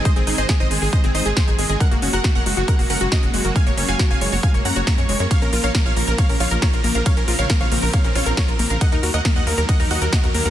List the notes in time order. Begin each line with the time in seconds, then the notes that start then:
Already playing: D#3 G#3 C4
0.05 G#3 C5 D#5, kick, closed hi-hat
0.16 G#1 C4 G#4, closed hi-hat
0.27 G#1 D#4 G#4, open hi-hat
0.38 G#1 G#4 C5 D#5, closed hi-hat
0.49 G#4, kick, snare, closed hi-hat
0.60 G#1 D#4 C5 D#5
0.71 G#1 G#3 G#4, open hi-hat
0.82 G#1 G#4, open hi-hat
0.93 G#3 C5 D#5, kick
1.04 G#1 C4 G#4, closed hi-hat
1.15 G#1 D#4 C5 D#5, open hi-hat
1.26 G#1 G#4, closed hi-hat
1.37 D#4 G#4 C5, kick, snare, closed hi-hat
1.47 G#1 D#4 G#4, closed hi-hat
1.58 G#1 G#3 G#4, open hi-hat
1.69 G#1 G#4 D#5, closed hi-hat
1.80 F#3 G#3 A#3 A#4 F#5, kick, closed hi-hat
1.91 F#1 A#3 F#4, closed hi-hat
2.02 F#1 C#4 F#4, open hi-hat
2.13 F#1 F#4 A#4 F#5, closed hi-hat
2.24 F#4, kick, snare, closed hi-hat
2.35 F#1 C#4 A#4 F#5
2.46 F#1 G#3 F#4, open hi-hat
2.57 F#1 F#4, closed hi-hat
2.68 G#3 A#4 F#5, kick, closed hi-hat
2.79 F#1 A#3 F#4, open hi-hat
2.90 F#1 C#4 A#4 F#5, open hi-hat
3.01 F#1 F#4, closed hi-hat
3.12 C#4 F#4 D#5, kick, snare, closed hi-hat
3.23 F#1 C#4 F#4, closed hi-hat
3.34 F#1 G#3 F#4, open hi-hat
3.45 F#1 F#4 A#4, closed hi-hat
3.56 G#3 F5 G#5, kick, closed hi-hat
3.67 F#1 A#3 C#5, closed hi-hat
3.77 F#1 C#4 C#5, open hi-hat
3.88 F#1 F#4 F5 G#5, closed hi-hat
3.99 F#4 C#5, kick, snare, closed hi-hat
4.10 F#1 C#4 F5 G#5
4.21 F#1 G#3 C#5, open hi-hat
4.32 F#1 F#4 C#5, open hi-hat
4.43 G#3 F5 G#5, kick
4.54 F#1 A#3 C#5, closed hi-hat
4.65 F#2 C#4 F#5 A#5, open hi-hat
4.76 F#1 F#4 C#5, closed hi-hat
4.87 C#4 A#5 C#6, kick, snare, closed hi-hat
4.98 F#2 C#4 C#5, closed hi-hat
5.09 F#1 G#3 C#5, open hi-hat
5.20 F#2 A#4 C#5, closed hi-hat
5.31 C#3 F3 A#3 C#5 F5, kick, closed hi-hat, ride
5.42 A#1 C#4 A#4, closed hi-hat
5.53 A#1 F4 A#4, open hi-hat
5.64 A#1 A#4 C#5 F5, closed hi-hat
5.75 A#3 A#4, kick, snare, closed hi-hat, ride
5.86 A#1 F4 C#5 F5
5.96 A#1 A#3 A#4, open hi-hat
6.07 A#1 A#4, closed hi-hat
6.18 A#3 C#5 F5, kick, closed hi-hat, ride
6.29 A#1 C#4 A#4, open hi-hat
6.40 A#1 F4 C#5 F5, open hi-hat
6.51 A#1 A#4, closed hi-hat
6.62 F4 A#4 C#5, kick, snare, closed hi-hat, ride
6.73 A#1 F4 A#4, closed hi-hat
6.84 A#1 A#3 A#4, open hi-hat
6.95 A#1 A#4 F5, closed hi-hat
7.06 A#3 C4 C#5 F5, kick, closed hi-hat, ride
7.17 A#1 C#4 A#4, closed hi-hat
7.28 A#1 F4 A#4, open hi-hat
7.39 A#1 A#4 C#5 F5, closed hi-hat
7.50 A#3 A#4, kick, snare, closed hi-hat, ride
7.61 A#1 F4 C#5 F5
7.72 A#1 A#3 A#4, open hi-hat
7.82 A#1 A#4, open hi-hat
7.93 A#3 C#5 F5, kick, closed hi-hat, ride
8.04 A#1 C#4 A#4, closed hi-hat
8.15 A#1 F4 C#5 F5, open hi-hat
8.26 A#1 A#4, closed hi-hat
8.37 F4 A#4 C#5, kick, snare, closed hi-hat, ride
8.48 A#1 F4 A#4, closed hi-hat
8.59 A#1 A#3 A#4, open hi-hat
8.70 A#1 A#4 F5, closed hi-hat
8.81 D#3 F#3 A#3 D#5 F#5, kick, closed hi-hat, ride
8.92 D#2 D#4 A#4, closed hi-hat
9.03 D#2 F#4 A#4, open hi-hat
9.14 D#2 A#4 D#5 F#5, closed hi-hat
9.25 A#3 A#4, kick, snare, closed hi-hat, ride
9.36 D#2 F#4 D#5 F#5
9.47 D#2 A#3 A#4, open hi-hat
9.58 D#2 A#4, closed hi-hat
9.69 A#3 D#5 F#5, kick, closed hi-hat, ride
9.80 D#2 D#4 A#4, open hi-hat
9.91 D#2 F#4 D#5 F#5, open hi-hat
10.02 D#2 A#4, closed hi-hat
10.13 F#4 D#5, kick, snare, closed hi-hat, ride
10.23 D#2 F#4 A#4, closed hi-hat
10.34 D#2 A#3 A#4, open hi-hat
10.45 D#2 A#4 F#5, closed hi-hat